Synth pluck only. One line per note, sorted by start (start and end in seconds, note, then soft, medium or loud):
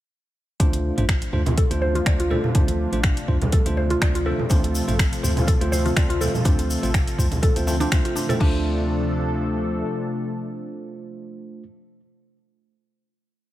0.60 0.72 D4 medium
1.57 1.70 A4 loud
1.82 1.94 C5 loud
1.95 2.01 F4 loud
2.06 2.19 D5 medium
2.20 2.30 F4 loud
2.31 2.43 A4 medium
2.55 2.67 D4 medium
3.53 3.65 A4 loud
3.77 3.89 C5 medium
3.91 3.97 F4 loud
4.02 4.14 D5 medium
4.15 4.25 F4 loud
4.26 4.38 A4 loud
4.51 4.63 D4 medium
5.48 5.60 A4 loud
5.72 5.84 C5 loud
5.85 5.92 F4 loud
5.97 6.09 D5 medium
6.10 6.20 F4 loud
6.21 6.33 A4 loud
6.45 6.57 D4 medium
7.43 7.55 A4 loud
7.67 7.79 A3 medium
7.80 7.91 D4 loud
7.92 8.04 A3 medium
8.05 8.15 F4 medium
8.16 8.28 D4 medium
8.29 8.39 A4 loud
8.40 8.63 D4 medium